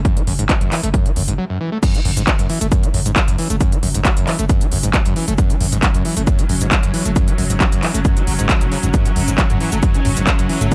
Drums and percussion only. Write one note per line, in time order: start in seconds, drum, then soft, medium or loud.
0.05 kick loud
0.05 closed hi-hat medium
0.17 closed hi-hat medium
0.27 open hi-hat loud
0.39 closed hi-hat medium
0.49 kick loud
0.49 clap loud
0.49 closed hi-hat medium
0.61 closed hi-hat medium
0.72 clap medium
0.72 open hi-hat loud
0.83 closed hi-hat medium
0.94 kick loud
0.94 closed hi-hat medium
1.06 closed hi-hat medium
1.16 open hi-hat loud
1.28 closed hi-hat medium
1.83 kick loud
1.83 closed hi-hat medium
1.83 crash loud
1.83 shaker medium
1.95 closed hi-hat medium
1.95 shaker soft
2.05 open hi-hat loud
2.17 closed hi-hat medium
2.17 shaker medium
2.27 kick loud
2.27 clap loud
2.27 closed hi-hat medium
2.27 shaker medium
2.39 closed hi-hat medium
2.39 shaker soft
2.50 open hi-hat medium
2.61 closed hi-hat medium
2.61 shaker medium
2.72 kick loud
2.72 closed hi-hat medium
2.72 shaker medium
2.83 closed hi-hat medium
2.83 shaker soft
2.94 open hi-hat loud
3.06 closed hi-hat medium
3.06 shaker medium
3.16 kick loud
3.16 clap loud
3.16 closed hi-hat medium
3.16 shaker medium
3.28 closed hi-hat medium
3.28 shaker soft
3.38 open hi-hat loud
3.50 closed hi-hat medium
3.50 shaker medium
3.61 kick loud
3.61 closed hi-hat medium
3.61 shaker medium
3.72 closed hi-hat medium
3.72 shaker soft
3.83 open hi-hat loud
3.95 closed hi-hat medium
3.95 shaker medium
4.05 kick loud
4.05 clap loud
4.05 closed hi-hat medium
4.05 shaker medium
4.17 closed hi-hat medium
4.17 shaker soft
4.27 clap medium
4.27 open hi-hat medium
4.39 closed hi-hat medium
4.39 shaker medium
4.49 kick loud
4.49 closed hi-hat medium
4.49 shaker medium
4.61 closed hi-hat medium
4.61 shaker soft
4.72 open hi-hat loud
4.83 closed hi-hat medium
4.83 shaker medium
4.94 kick loud
4.94 clap loud
4.94 closed hi-hat medium
4.94 shaker medium
5.06 closed hi-hat medium
5.06 shaker soft
5.16 open hi-hat loud
5.28 closed hi-hat medium
5.28 shaker medium
5.38 kick loud
5.38 closed hi-hat medium
5.38 shaker medium
5.50 closed hi-hat medium
5.50 shaker soft
5.61 open hi-hat loud
5.72 closed hi-hat medium
5.72 shaker medium
5.83 kick loud
5.83 clap loud
5.83 closed hi-hat medium
5.83 shaker medium
5.94 closed hi-hat medium
5.94 shaker soft
6.05 open hi-hat medium
6.17 closed hi-hat medium
6.17 shaker medium
6.27 kick loud
6.27 closed hi-hat medium
6.27 shaker medium
6.39 closed hi-hat medium
6.39 shaker soft
6.49 open hi-hat loud
6.61 closed hi-hat medium
6.61 shaker medium
6.72 kick loud
6.72 clap loud
6.72 closed hi-hat medium
6.72 shaker medium
6.83 closed hi-hat medium
6.83 shaker soft
6.94 open hi-hat loud
7.06 closed hi-hat medium
7.06 shaker medium
7.16 kick loud
7.16 closed hi-hat medium
7.16 shaker medium
7.28 closed hi-hat medium
7.28 shaker soft
7.38 open hi-hat loud
7.50 closed hi-hat medium
7.50 shaker medium
7.60 kick loud
7.60 clap loud
7.60 closed hi-hat medium
7.60 shaker medium
7.72 closed hi-hat medium
7.72 shaker soft
7.83 clap medium
7.83 open hi-hat medium
7.95 closed hi-hat medium
7.95 shaker medium
8.05 kick loud
8.05 closed hi-hat medium
8.05 shaker medium
8.17 closed hi-hat medium
8.17 shaker soft
8.27 open hi-hat loud
8.39 closed hi-hat medium
8.39 shaker medium
8.49 kick loud
8.49 clap loud
8.49 closed hi-hat medium
8.49 shaker medium
8.61 closed hi-hat medium
8.61 shaker soft
8.72 open hi-hat medium
8.83 closed hi-hat medium
8.83 shaker medium
8.94 kick loud
8.94 closed hi-hat medium
8.94 mid tom medium
8.94 shaker medium
9.06 closed hi-hat medium
9.06 shaker soft
9.16 open hi-hat loud
9.28 closed hi-hat medium
9.28 shaker medium
9.38 kick loud
9.38 clap loud
9.38 closed hi-hat medium
9.38 shaker medium
9.50 closed hi-hat medium
9.50 mid tom medium
9.50 shaker soft
9.60 open hi-hat medium
9.72 closed hi-hat medium
9.72 shaker medium
9.83 kick loud
9.83 closed hi-hat medium
9.83 shaker medium
9.94 closed hi-hat medium
9.94 shaker soft
10.05 mid tom medium
10.05 open hi-hat loud
10.17 closed hi-hat medium
10.17 shaker medium
10.27 kick loud
10.27 clap loud
10.27 closed hi-hat medium
10.27 shaker medium
10.39 closed hi-hat medium
10.39 shaker soft
10.49 open hi-hat medium
10.61 closed hi-hat medium
10.61 mid tom medium
10.61 shaker medium
10.72 kick loud
10.72 closed hi-hat medium
10.72 shaker medium